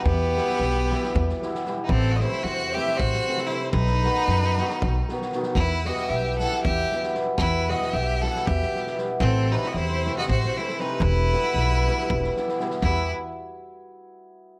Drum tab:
SD |--ooo-oo-oooo-|--ooo-oo-o-oo-|-oo-oooo--oooo|--ooo-oo--ooo-|
BD |o-------o-----|o-------o-----|o-------o-----|o-------o-----|

SD |--ooo-oo-oooo-|--ooo-oo-oooo-|--o-oooo-ooooo|--------------|
BD |o-------o-----|o-------o-----|o-------o-----|o-------------|